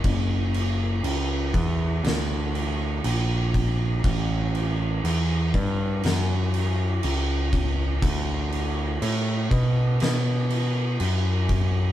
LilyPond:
<<
  \new Staff \with { instrumentName = "Picked electric bass" } { \clef bass \time 4/4 \key fis \phrygian \tempo 4 = 60 fis,,4 cis,8 e,8 d,4 ais,,4 | a,,4 e,8 g,8 fis,4 cis,4 | d,4 a,8 b,8 b,4 fis,4 | }
  \new DrumStaff \with { instrumentName = "Drums" } \drummode { \time 4/4 <cymc bd>8 cymc8 cymc8 <cymc bd>8 <cymc sn>8 cymc8 cymc8 <cymc bd>8 | <cymc bd>8 cymc8 cymc8 <cymc bd>8 <cymc sn>8 cymc8 cymc8 <cymc bd>8 | <cymc bd>8 cymc8 cymc8 <cymc bd>8 <cymc sn>8 cymc8 cymc8 <cymc bd>8 | }
>>